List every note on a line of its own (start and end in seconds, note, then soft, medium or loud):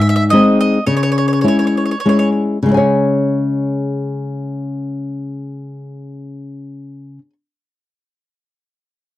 0.00 0.33 G#2 medium
0.00 0.08 E5 medium
0.09 0.15 E5 medium
0.16 0.23 E5 medium
0.30 0.78 G#3 medium
0.30 0.78 C4 soft
0.30 0.78 D#4 medium
0.30 0.60 D#5 medium
0.61 0.86 D#5 medium
0.87 1.44 C#3 medium
0.87 0.96 C#5 medium
0.97 1.02 C#5 medium
1.03 1.10 C#5 medium
1.12 1.17 C#5 soft
1.18 1.27 C#5 medium
1.28 1.32 C#5 soft
1.33 1.40 C#5 soft
1.41 1.93 G#3 soft
1.41 1.94 C#4 soft
1.41 1.94 E4 medium
1.41 1.47 C#5 soft
1.48 1.58 C#5 medium
1.59 1.66 C#5 soft
1.67 1.76 C#5 soft
1.77 1.84 C#5 soft
1.85 1.90 C#5 soft
1.91 1.99 C#5 soft
2.00 2.08 C#5 medium
2.06 2.57 G#3 soft
2.06 2.57 C#4 soft
2.06 2.57 E4 medium
2.06 2.18 C#5 soft
2.19 2.28 C#5 medium
2.63 7.18 C#3 medium
2.63 7.21 G#3 medium
2.69 2.74 E4 soft
2.69 2.77 C#5 soft
2.74 7.32 C#5 medium
2.74 7.30 G#5 medium